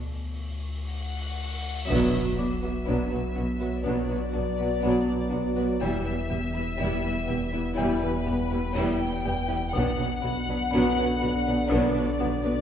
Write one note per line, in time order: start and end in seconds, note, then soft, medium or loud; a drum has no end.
0.00 1.89 D2 medium
0.00 cymbal swell soft
0.89 1.84 F#5 medium
1.85 2.11 B1 medium
1.85 2.18 B2 soft
1.85 2.11 B2 medium
1.85 5.76 F#3 medium
1.85 5.76 B3 medium
1.85 2.11 B3 medium
1.85 2.11 D4 medium
1.85 3.80 E5 medium
1.85 impact soft
1.89 5.83 B1 medium
1.89 2.12 F#3 medium
1.89 2.12 B3 medium
2.12 2.22 B2 soft
2.12 2.22 F#3 soft
2.12 2.22 B3 soft
2.12 2.20 F#4 soft
2.12 2.21 B4 soft
2.37 2.47 B1 soft
2.37 2.47 B2 soft
2.37 2.47 F#3 soft
2.37 2.67 B3 soft
2.37 2.47 B3 soft
2.37 2.45 D4 soft
2.37 2.45 F#4 soft
2.37 5.29 D6 soft
2.61 2.71 B2 soft
2.61 2.72 F#3 soft
2.61 2.72 B3 soft
2.61 2.69 F#4 soft
2.61 2.69 B4 soft
2.85 2.97 B1 soft
2.85 2.96 B2 soft
2.85 3.10 F#3 soft
2.85 3.15 B3 soft
2.85 3.09 B3 soft
2.85 3.10 B3 soft
2.85 3.09 D4 soft
3.11 3.21 B2 soft
3.11 3.20 F#3 soft
3.11 3.21 B3 soft
3.11 3.19 F#4 soft
3.11 3.19 B4 soft
3.35 3.46 B1 soft
3.35 3.45 B2 soft
3.35 3.44 F#3 soft
3.35 3.65 B3 soft
3.35 3.44 B3 soft
3.35 3.43 D4 soft
3.35 3.43 F#4 soft
3.60 3.69 B2 soft
3.60 3.68 F#3 soft
3.60 3.69 B3 soft
3.60 3.69 F#4 soft
3.60 3.68 B4 soft
3.83 3.94 B1 soft
3.83 4.14 B2 soft
3.83 3.93 B2 soft
3.83 4.09 F#3 medium
3.83 4.07 B3 soft
3.83 4.09 B3 soft
3.83 4.07 D4 soft
3.83 5.81 D5 medium
4.08 4.18 B2 soft
4.08 4.18 F#3 soft
4.08 4.18 B3 soft
4.08 4.17 F#4 soft
4.08 4.16 B4 soft
4.31 4.42 B2 soft
4.31 4.64 B2 soft
4.31 4.40 D4 soft
4.31 4.39 F#4 soft
4.36 4.44 B1 soft
4.36 4.44 F#3 soft
4.36 4.44 B3 soft
4.58 4.67 B2 soft
4.58 4.69 F#3 soft
4.58 4.69 B3 soft
4.58 4.66 F#4 soft
4.58 4.66 B4 soft
4.82 4.93 B1 soft
4.82 4.92 B2 soft
4.82 5.07 F#3 soft
4.82 5.05 B3 soft
4.82 5.13 B3 soft
4.82 5.07 B3 soft
4.82 5.05 D4 soft
5.30 5.42 B1 soft
5.30 5.62 B2 soft
5.30 5.41 B2 soft
5.30 5.38 D4 soft
5.30 5.39 F#4 soft
5.30 8.23 F#4 soft
5.30 8.23 F#5 soft
5.34 5.43 F#3 soft
5.34 5.42 B3 soft
5.56 5.65 B2 soft
5.56 5.67 F#3 soft
5.56 5.67 B3 soft
5.56 5.64 F#4 soft
5.56 5.64 B4 soft
5.80 9.78 E1 medium
5.80 5.91 E1 soft
5.80 6.11 E2 medium
5.80 5.90 E2 soft
5.80 6.04 G3 soft
5.80 9.70 G3 soft
5.80 6.05 G3 soft
5.80 9.70 B3 soft
5.80 6.05 B3 soft
5.80 6.03 E4 soft
5.80 7.78 E5 medium
6.04 6.14 E2 soft
6.04 6.16 B3 soft
6.04 6.12 E4 soft
6.04 6.12 B4 soft
6.09 6.17 G3 soft
6.30 6.40 E1 soft
6.30 6.39 E2 soft
6.30 6.60 E3 soft
6.30 6.40 G3 soft
6.30 6.38 B3 soft
6.30 6.40 B3 soft
6.30 6.38 G4 soft
6.54 6.63 E2 soft
6.54 6.65 G3 soft
6.54 6.65 B3 soft
6.54 6.62 E4 soft
6.54 6.62 B4 soft
6.78 6.89 E1 soft
6.78 6.88 E2 medium
6.78 7.09 E3 soft
6.78 7.02 G3 soft
6.78 7.04 G3 soft
6.78 7.04 B3 soft
6.78 7.02 E4 soft
7.04 7.13 E2 soft
7.04 7.14 G3 soft
7.04 7.14 B3 soft
7.04 7.12 E4 soft
7.04 7.12 B4 soft
7.27 7.38 E1 soft
7.27 7.38 E2 soft
7.27 7.58 E3 soft
7.27 7.39 G3 soft
7.27 7.35 B3 soft
7.27 7.39 B3 soft
7.27 7.35 G4 soft
7.52 7.62 E2 soft
7.52 7.63 G3 soft
7.52 7.63 B3 soft
7.52 7.60 E4 soft
7.52 7.60 B4 soft
7.76 7.87 E1 medium
7.76 8.07 E2 medium
7.76 7.86 E2 soft
7.76 8.00 G3 soft
7.76 8.02 B3 soft
7.76 8.00 E4 medium
7.76 10.69 G4 soft
7.76 8.74 B4 medium
7.76 10.69 E5 soft
7.81 8.03 G3 soft
8.02 8.11 E2 soft
8.02 8.12 G3 soft
8.02 8.12 B3 soft
8.02 8.11 E4 soft
8.02 8.10 B4 soft
8.26 8.36 E1 soft
8.26 8.35 E2 soft
8.26 8.57 E2 soft
8.26 8.37 G3 soft
8.26 8.35 B3 soft
8.26 8.38 B3 soft
8.26 8.34 G4 soft
8.51 8.60 E2 soft
8.51 8.60 G3 soft
8.51 8.61 B3 soft
8.51 8.60 E4 soft
8.51 8.59 B4 soft
8.75 8.85 E1 medium
8.75 8.84 E2 medium
8.75 9.06 E3 soft
8.75 8.98 G3 medium
8.75 9.00 G3 soft
8.75 9.00 B3 medium
8.75 8.98 E4 medium
8.75 9.74 G5 medium
9.25 9.34 E1 soft
9.25 9.33 E2 soft
9.25 9.55 E2 soft
9.25 9.34 G3 soft
9.25 9.33 B3 soft
9.25 9.34 B3 soft
9.25 9.33 G4 soft
9.48 9.58 E2 soft
9.48 9.59 G3 soft
9.48 9.59 B3 soft
9.48 9.56 E4 soft
9.48 9.57 B4 soft
9.73 9.83 B1 medium
9.73 12.61 B1 medium
9.73 10.03 B2 medium
9.73 9.82 B2 medium
9.73 12.61 D3 medium
9.73 9.98 F#3 medium
9.73 9.98 B3 soft
9.73 9.98 B3 medium
9.73 12.61 D4 medium
9.73 9.97 D4 medium
9.73 11.67 F#5 medium
9.98 10.07 B2 soft
9.98 10.08 F#3 soft
9.98 10.07 B3 soft
9.98 10.06 D4 soft
9.98 10.07 B4 soft
10.22 10.32 B1 soft
10.22 10.32 B2 soft
10.22 10.31 F#3 soft
10.22 10.52 B3 soft
10.22 10.32 B3 soft
10.22 10.32 F#4 soft
10.48 10.56 B2 soft
10.48 10.57 F#3 soft
10.48 10.57 B3 soft
10.48 10.57 D4 soft
10.48 10.57 B4 soft
10.71 10.82 B1 medium
10.71 10.81 B2 medium
10.71 10.97 F#3 medium
10.71 11.01 B3 soft
10.71 10.96 B3 medium
10.71 10.97 B3 medium
10.71 10.96 D4 medium
10.97 11.05 B2 soft
10.97 11.06 F#3 soft
10.97 11.06 B3 soft
10.97 11.06 D4 soft
10.97 11.05 B4 soft
11.20 11.31 B1 soft
11.20 11.31 B2 soft
11.20 11.32 F#3 soft
11.20 11.50 B3 soft
11.20 11.30 B3 soft
11.20 11.31 B3 soft
11.20 11.30 F#4 soft
11.46 11.55 B2 soft
11.46 11.56 F#3 soft
11.46 11.56 B3 soft
11.46 11.54 D4 soft
11.46 11.54 B4 soft
11.69 11.80 B1 medium
11.69 11.99 B2 medium
11.69 11.80 B2 medium
11.69 11.95 F#3 medium
11.69 11.93 B3 medium
11.69 11.95 B3 medium
11.69 11.93 D4 medium
11.69 12.61 D5 medium
11.95 12.03 B2 soft
11.95 12.05 F#3 medium
11.95 12.06 B3 soft
11.95 12.03 D4 soft
11.95 12.03 B4 soft
12.19 12.30 B1 soft
12.19 12.50 B2 soft
12.19 12.29 B2 soft
12.19 12.29 F#3 soft
12.19 12.27 B3 soft
12.19 12.30 B3 soft
12.19 12.27 F#4 soft
12.19 12.61 F#5 soft
12.43 12.54 B2 soft
12.43 12.53 F#3 soft
12.43 12.53 B3 medium
12.43 12.51 D4 soft
12.43 12.51 B4 soft